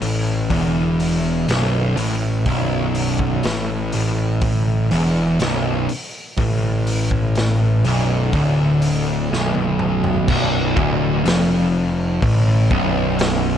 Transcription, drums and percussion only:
0.02 open hi-hat medium
0.50 kick loud
0.50 open hi-hat medium
1.00 open hi-hat medium
1.49 snare loud
1.49 open hi-hat medium
1.97 open hi-hat medium
2.46 kick loud
2.46 open hi-hat medium
2.95 open hi-hat medium
3.19 kick medium
3.43 snare medium
3.43 open hi-hat medium
3.92 open hi-hat medium
4.42 kick loud
4.42 open hi-hat medium
4.91 open hi-hat medium
5.40 snare loud
5.40 open hi-hat medium
5.89 open hi-hat medium
6.37 kick loud
6.37 open hi-hat medium
6.87 open hi-hat medium
7.11 kick medium
7.35 snare medium
7.35 open hi-hat medium
7.85 open hi-hat soft
8.33 kick loud
8.33 open hi-hat medium
8.82 open hi-hat medium
9.33 snare medium
9.55 high tom medium
9.79 mid tom medium
10.04 floor tom medium
10.28 kick loud
10.28 crash loud
10.77 kick loud
11.26 snare loud
11.26 open hi-hat medium
12.22 kick loud
12.22 open hi-hat medium
12.71 kick loud
13.19 snare loud
13.19 open hi-hat medium

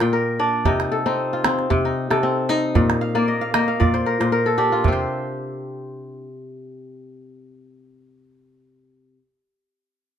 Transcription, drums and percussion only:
0.00 calabash click soft
0.65 calabash thump medium
0.80 calabash click soft
1.45 calabash click medium
1.59 calabash click soft
1.71 calabash thump medium
1.71 calabash click soft
2.11 calabash click soft
2.75 calabash thump medium
2.75 calabash click soft
2.90 calabash click soft
3.54 calabash click medium
3.81 calabash thump medium
3.95 calabash click soft
4.21 calabash click soft
4.85 calabash thump medium

